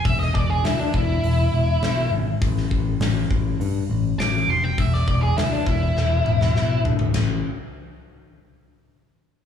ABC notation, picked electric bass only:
X:1
M:4/4
L:1/8
Q:1/4=102
K:Ephr
V:1 name="Picked electric bass" clef=bass
E,,, E,,, D,, E,,, E,,, E,,, B,,, ^G,,, | A,,, A,,, A,,, A,,, G,, A,,, A,,, F,,, | E,,, E,,, D,, E,,, E,,, E,,, B,,, D,, | A,,, z6 z |]